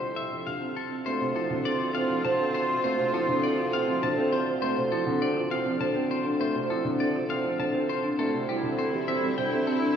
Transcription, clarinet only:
1.06 1.28 F4 soft
1.37 1.59 F4 medium
1.68 1.90 F4 medium
1.99 2.21 F4 medium
2.30 2.52 F4 medium
2.61 2.83 F4 medium
2.92 3.14 F4 medium
3.23 3.45 F4 medium
3.55 3.76 F4 medium
3.86 4.07 F4 medium
4.17 4.38 F4 soft
8.19 8.41 E4 soft
8.50 8.72 E4 medium
8.81 9.03 E4 medium
9.12 9.34 E4 medium
9.43 9.65 E4 medium
9.75 9.96 E4 medium

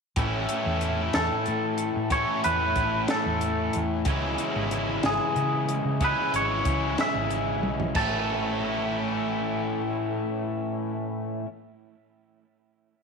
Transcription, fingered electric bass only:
0.17 0.45 A1 medium
0.66 1.09 E2 medium
1.15 1.29 E2 medium
1.48 1.90 A2 medium
1.96 2.24 A2 medium
2.45 2.73 E2 medium
2.76 3.05 A1 medium
3.26 3.68 E2 medium
3.76 4.03 E2 medium
4.06 4.35 C#2 medium
4.56 4.98 G#1 medium
5.04 5.18 G#1 medium
5.36 5.79 C#3 medium
5.85 6.14 C#3 medium
6.33 6.62 G#1 medium
6.66 6.94 C#2 medium
7.15 7.64 G#1 medium
7.64 7.92 B1 medium
7.96 11.40 A1 medium

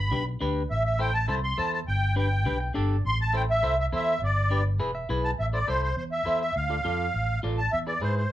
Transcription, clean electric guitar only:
0.11 0.22 D4 medium
0.11 0.22 G4 medium
0.11 0.22 B4 medium
0.41 0.62 D4 medium
0.41 0.62 G4 medium
0.41 0.62 B4 loud
0.99 1.10 E4 medium
0.99 1.10 A4 medium
0.99 1.10 C5 medium
1.28 1.39 E4 medium
1.28 1.39 A4 medium
1.28 1.39 C5 medium
1.58 1.79 E4 medium
1.58 1.79 A4 medium
1.58 1.79 C5 medium
2.16 2.27 D4 medium
2.16 2.27 G4 medium
2.16 2.27 B4 medium
2.45 2.56 D4 medium
2.45 2.56 G4 medium
2.45 2.57 B4 medium
2.60 2.74 G5 medium
2.74 2.95 D4 medium
2.74 2.96 G4 medium
2.74 2.96 A4 medium
2.74 3.02 D5 medium
3.33 3.44 E4 medium
3.33 3.44 A4 medium
3.33 3.44 C5 medium
3.63 3.73 E4 medium
3.63 3.73 A4 medium
3.63 3.74 C5 medium
3.93 4.13 E4 medium
3.93 4.13 A4 medium
3.93 4.13 C5 medium
4.50 4.61 D4 medium
4.50 4.61 G4 medium
4.50 4.61 B4 medium
4.80 4.90 E4 medium
4.80 4.90 G#4 medium
4.80 4.90 B4 medium
4.95 5.08 E5 medium
5.09 5.30 E4 medium
5.09 5.30 G#4 medium
5.09 5.30 B4 loud
5.09 5.37 G#5 medium
5.53 5.58 E4 medium
5.53 5.58 A4 medium
5.53 5.59 C5 medium
5.67 5.88 E4 medium
5.67 5.88 A4 medium
5.67 5.89 C5 medium
6.25 6.41 E4 medium
6.25 6.42 A4 medium
6.25 6.42 C5 medium
6.70 6.75 F4 medium
6.70 6.75 A4 medium
6.70 6.76 D5 medium
6.85 7.05 F4 medium
6.85 7.05 A4 medium
6.85 7.06 D5 medium
7.43 7.59 F4 medium
7.43 7.59 A4 medium
7.43 7.59 D5 medium
7.87 7.92 E4 medium
7.87 7.92 G#4 medium
7.87 7.93 B4 medium
8.01 8.22 E4 medium
8.01 8.22 G#4 medium
8.01 8.23 B4 medium

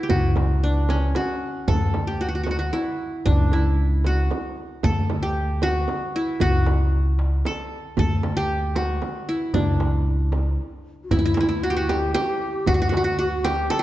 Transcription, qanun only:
0.00 1.24 E4 medium
0.00 0.16 G4 medium
0.10 1.15 F#4 medium
0.64 0.96 D4 medium
0.90 2.44 C#4 medium
1.16 2.13 F#4 medium
1.68 2.85 A4 medium
2.07 2.27 G4 medium
2.21 2.28 F#4 medium
2.28 2.35 F#4 medium
2.35 2.43 F#4 medium
2.43 2.50 F#4 medium
2.51 2.58 F#4 medium
2.59 3.89 F#4 medium
2.73 3.53 E4 medium
3.26 4.75 D4 medium
3.53 4.92 E4 medium
4.06 5.29 F#4 medium
4.84 6.01 A4 medium
5.23 5.69 G4 medium
5.63 6.41 F#4 medium
6.16 7.55 E4 medium
6.41 7.71 F#4 loud
7.46 7.99 A4 medium
7.99 9.16 A4 medium
8.37 8.82 G4 medium
8.76 10.06 F#4 medium
9.29 10.68 E4 medium
9.54 11.03 D4 medium
11.11 11.18 E4 loud
11.19 11.25 E4 medium
11.25 11.34 E4 medium
11.34 11.40 E4 medium
11.41 11.48 E4 medium
11.49 12.88 E4 medium
11.63 11.76 F#4 medium
11.70 11.83 G4 medium
11.77 11.95 F#4 medium
11.89 12.14 G4 medium
12.14 12.73 G4 loud
12.67 12.74 F#4 loud
12.74 12.81 F#4 medium
12.82 12.89 F#4 medium
12.89 12.97 F#4 medium
12.97 13.04 F#4 medium
13.04 13.18 F#4 medium
13.19 13.50 F#4 medium
13.44 13.79 G4 loud
13.70 13.83 A4 loud
13.79 13.83 G4 medium

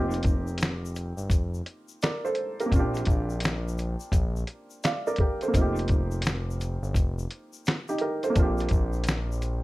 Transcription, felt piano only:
0.00 2.64 A#3 medium
0.00 2.67 C4 medium
0.00 2.68 D#4 medium
0.00 2.70 F4 medium
0.00 2.01 G4 medium
2.03 2.24 A#4 medium
2.03 2.23 D5 medium
2.25 2.58 A4 medium
2.25 2.58 C5 medium
2.60 2.78 G4 medium
2.60 2.93 A#4 medium
2.66 5.46 A#3 medium
2.66 5.49 C4 medium
2.73 2.80 C#4 medium
2.73 5.52 F4 medium
2.79 5.54 D4 medium
2.79 4.83 G4 medium
4.84 5.05 D5 medium
4.84 5.05 F5 medium
5.07 5.18 A#4 medium
5.07 5.19 D5 medium
5.20 5.41 G4 medium
5.20 5.41 A#4 medium
5.43 5.76 A4 medium
5.43 5.75 C5 medium
5.48 8.28 A#3 medium
5.48 8.31 C4 medium
5.54 7.62 D#4 medium
5.54 7.63 F4 medium
5.61 7.65 G4 medium
7.89 8.01 D#4 medium
7.89 8.00 G4 medium
8.01 8.23 G4 medium
8.01 8.23 A#4 medium
8.24 8.58 A4 medium
8.24 8.57 C5 medium
8.30 9.63 A#3 medium
8.30 9.63 C4 medium
8.36 9.63 D4 medium
8.36 9.63 F4 medium
8.42 9.63 G4 medium

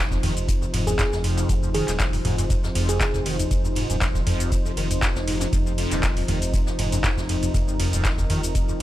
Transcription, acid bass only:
0.11 0.18 F2 loud
0.23 0.34 D#3 medium
0.62 0.66 F2 medium
0.73 0.85 G#2 medium
0.87 0.94 F#2 loud
0.99 1.03 F2 loud
1.12 1.19 F2 medium
1.24 1.51 F2 loud
1.49 1.54 F3 medium
1.63 1.69 F2 medium
1.74 1.86 D#3 medium
2.13 2.17 F2 medium
2.25 2.36 G#2 medium
2.38 2.45 F#2 loud
2.50 2.55 F2 loud
2.64 2.70 F2 medium
2.75 3.02 F2 loud
3.00 3.05 F3 medium
3.14 3.20 F2 loud
3.26 3.37 D#3 medium
3.64 3.68 F2 medium
3.76 3.87 G#2 medium
3.90 3.96 F#2 loud
4.01 4.06 F2 loud
4.15 4.21 F2 medium
4.27 4.53 F2 loud
4.52 4.56 F3 medium
4.65 4.72 F2 loud
4.77 4.88 D#3 medium
5.16 5.20 F2 medium
5.27 5.39 G#2 medium
5.41 5.47 F#2 loud
5.53 5.57 F2 loud
5.66 5.73 F2 medium
5.78 6.05 F2 loud
6.03 6.08 F3 medium
6.17 6.23 F2 loud
6.28 6.39 D#3 medium
6.67 6.71 F2 medium
6.79 6.90 G#2 medium
6.92 6.99 F#2 loud
7.04 7.08 F2 loud
7.17 7.24 F2 medium
7.29 7.37 F2 loud
7.54 7.59 F2 medium
7.68 7.74 F2 medium
7.79 8.06 F2 loud
8.05 8.09 F3 medium
8.18 8.25 F2 loud
8.30 8.41 D#3 medium
8.69 8.73 F2 medium

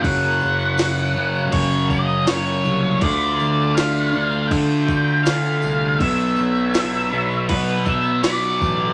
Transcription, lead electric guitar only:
0.03 1.49 F#5 medium
1.52 1.89 C#5 medium
1.90 2.27 D#5 medium
2.28 3.01 C#5 medium
3.02 3.79 D5 loud
3.75 4.47 F5 medium
4.48 5.23 G5 loud
5.23 6.02 F5 medium
5.99 7.45 E5 loud
7.49 7.88 B4 medium
7.85 8.20 E5 medium
8.23 8.93 D5 loud

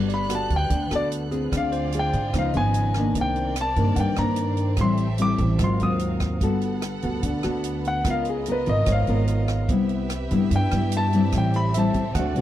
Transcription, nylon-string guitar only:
0.00 0.69 G3 medium
0.00 0.27 B3 medium
0.00 0.27 F#4 medium
0.00 0.27 A4 medium
0.29 0.70 B3 soft
0.29 0.70 F#4 soft
0.29 0.70 A4 soft
0.70 1.50 D3 medium
0.91 1.29 B3 medium
0.91 1.29 F#4 medium
0.91 1.29 A4 medium
1.31 1.89 C4 medium
1.31 1.89 F4 soft
1.31 1.90 G#4 medium
1.52 2.32 D3 medium
1.94 2.21 C4 soft
1.94 2.21 F4 soft
1.94 2.21 G#4 soft
2.34 3.13 C#3 medium
2.34 2.51 F3 medium
2.34 2.51 B3 medium
2.34 2.51 D#4 medium
2.56 2.93 F3 medium
2.56 2.93 B3 medium
2.56 2.93 D#4 medium
2.97 3.54 D#3 medium
2.97 3.54 A#3 medium
2.97 3.54 D4 medium
3.16 3.95 C3 medium
3.77 4.14 D#3 medium
3.77 4.14 A#3 medium
3.77 4.15 D4 medium
3.98 4.77 G2 medium
4.18 4.76 D#3 medium
4.18 4.76 A#3 medium
4.18 4.76 D4 medium
4.79 5.59 A2 medium
4.79 5.05 G3 medium
4.79 5.05 C4 medium
4.79 5.05 E4 medium
5.18 5.58 G3 soft
5.18 5.59 C4 soft
5.18 5.59 E4 medium
5.60 6.40 G#2 soft
5.60 5.77 F#3 medium
5.60 5.77 C4 medium
5.60 5.78 F4 medium
5.81 6.39 F#3 medium
5.81 6.39 C4 medium
5.81 6.39 F4 medium
6.42 7.22 G3 medium
6.42 6.83 B3 medium
6.42 6.83 F#4 medium
6.42 6.83 A4 medium
7.03 7.41 B3 medium
7.03 7.41 F#4 medium
7.03 7.41 A4 medium
7.23 8.03 D3 medium
7.44 8.02 B3 medium
7.44 8.02 F#4 medium
7.44 8.02 A4 medium
8.05 8.85 C#3 medium
8.05 8.43 B3 soft
8.05 8.43 F4 medium
8.05 8.44 A#4 medium
8.47 9.05 B3 medium
8.47 9.05 F4 soft
8.47 9.06 A#4 soft
8.88 9.67 G#2 medium
9.08 9.66 B3 medium
9.08 9.66 F4 medium
9.08 9.67 A#4 medium
9.70 10.49 C3 medium
9.70 10.10 G3 medium
9.70 10.10 B3 medium
9.70 10.11 E4 medium
10.32 10.69 G3 medium
10.32 10.69 B3 medium
10.32 10.69 E4 medium
10.53 11.32 G2 medium
10.73 11.10 G3 medium
10.73 11.10 B3 medium
10.73 11.10 E4 medium
11.14 11.71 G3 medium
11.14 11.71 C4 medium
11.14 11.72 E4 medium
11.35 12.14 A2 medium
11.75 12.02 G3 medium
11.75 12.03 C4 soft
11.75 12.03 E4 medium
12.18 12.41 D3 medium
12.18 12.33 A3 medium
12.18 12.34 C4 medium
12.18 12.34 F#4 medium
12.37 12.41 A3 medium
12.37 12.41 C4 medium
12.37 12.41 F#4 medium

